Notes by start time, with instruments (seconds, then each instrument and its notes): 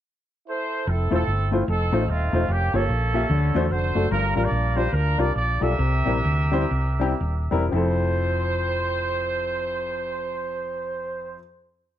0.47 horn section E4 A4 C5
0.87 fingered electric bass F1, horn section C4 E4 A4
1.11 fingered electric bass E1, upright piano A3 E4 F4 C5, horn section C4 E4 A4
1.27 fingered electric bass G1
1.51 upright piano A3 E4 F4 C5
1.68 fingered electric bass F1, horn section C4 D#4 A4
1.92 fingered electric bass A1, upright piano A3 D#4 F4 C5
2.08 fingered electric bass D#1, horn section A3 C4 F4
2.33 fingered electric bass E1, upright piano A3 D#4 F4 C5
2.48 fingered electric bass F1, horn section A#3 C#4 G4
2.73 fingered electric bass G1, upright piano A#3 F4 G4 C#5, horn section C#4 A4
2.89 fingered electric bass A#1
3.14 upright piano A#3 F4 G4 E5
3.30 fingered electric bass D2, upright piano D3
3.54 fingered electric bass E2, upright piano A3 D4 F#4 C5
3.71 fingered electric bass F1, horn section F#4 A4 C5
3.95 fingered electric bass F#1, upright piano A3 D4 F#4 A4
4.10 fingered electric bass G1, upright piano G2, horn section D4 F4 A#4
4.35 fingered electric bass A1, upright piano G3 D4 F4 A#4, horn section A#4
4.43 horn section F4 A#4 D5
4.51 fingered electric bass A#1
4.76 upright piano G3 D4 F4 C5, horn section C5
4.93 fingered electric bass D2, horn section D4 F4 A#4
5.18 fingered electric bass C2, upright piano G3 D4 F4 A#4, horn section D5
5.35 fingered electric bass A#1, horn section D5
5.61 fingered electric bass B1, upright piano G3 D4 F4 A4, horn section G4 A#4 E5
5.78 fingered electric bass C2, upright piano C3
6.05 fingered electric bass A#1, upright piano G3 C4 E4 A#4
6.24 fingered electric bass D2
6.52 upright piano G3 C4 E4 C5
6.71 fingered electric bass C2
7.00 upright piano G3 C4 E4 G4
7.21 fingered electric bass D#1
7.51 fingered electric bass E1, upright piano G3 C4 E4 A#4
7.69 fingered electric bass F1, upright piano F2 F3 C4, horn section C5
7.74 upright piano E4 A4